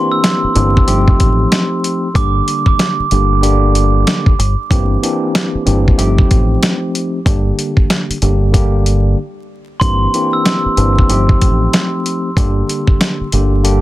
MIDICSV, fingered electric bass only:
0, 0, Header, 1, 3, 480
1, 0, Start_track
1, 0, Key_signature, -2, "minor"
1, 0, Tempo, 638298
1, 1619, Time_signature, 4, 2, 24, 8
1, 10387, End_track
2, 0, Start_track
2, 0, Title_t, "Fingered electric bass"
2, 0, Program_c, 0, 33
2, 420, Note_on_c, 0, 31, 109
2, 603, Note_off_c, 0, 31, 0
2, 660, Note_on_c, 0, 31, 104
2, 843, Note_off_c, 0, 31, 0
2, 905, Note_on_c, 0, 33, 92
2, 1085, Note_off_c, 0, 33, 0
2, 1619, Note_on_c, 0, 31, 109
2, 1802, Note_off_c, 0, 31, 0
2, 2340, Note_on_c, 0, 31, 91
2, 3030, Note_off_c, 0, 31, 0
2, 3301, Note_on_c, 0, 31, 95
2, 3414, Note_off_c, 0, 31, 0
2, 3540, Note_on_c, 0, 31, 101
2, 3723, Note_off_c, 0, 31, 0
2, 4262, Note_on_c, 0, 31, 106
2, 4444, Note_off_c, 0, 31, 0
2, 4501, Note_on_c, 0, 31, 107
2, 4683, Note_off_c, 0, 31, 0
2, 4746, Note_on_c, 0, 33, 92
2, 4926, Note_off_c, 0, 33, 0
2, 5460, Note_on_c, 0, 31, 105
2, 5642, Note_off_c, 0, 31, 0
2, 6181, Note_on_c, 0, 31, 90
2, 6870, Note_off_c, 0, 31, 0
2, 7380, Note_on_c, 0, 31, 105
2, 7563, Note_off_c, 0, 31, 0
2, 8102, Note_on_c, 0, 31, 106
2, 8284, Note_off_c, 0, 31, 0
2, 8343, Note_on_c, 0, 31, 101
2, 8524, Note_off_c, 0, 31, 0
2, 8587, Note_on_c, 0, 33, 91
2, 8767, Note_off_c, 0, 33, 0
2, 9301, Note_on_c, 0, 31, 107
2, 9483, Note_off_c, 0, 31, 0
2, 10022, Note_on_c, 0, 31, 89
2, 10387, Note_off_c, 0, 31, 0
2, 10387, End_track
3, 0, Start_track
3, 0, Title_t, "Muted fingered electric bass strokes"
3, 329, Note_on_c, 9, 29, 49
3, 405, Note_off_c, 9, 29, 0
3, 2251, Note_on_c, 9, 29, 50
3, 2326, Note_off_c, 9, 29, 0
3, 4171, Note_on_c, 9, 29, 51
3, 4246, Note_off_c, 9, 29, 0
3, 6089, Note_on_c, 9, 29, 49
3, 6165, Note_off_c, 9, 29, 0
3, 8011, Note_on_c, 9, 29, 51
3, 8086, Note_off_c, 9, 29, 0
3, 9931, Note_on_c, 9, 29, 50
3, 10006, Note_off_c, 9, 29, 0
3, 10387, End_track
0, 0, End_of_file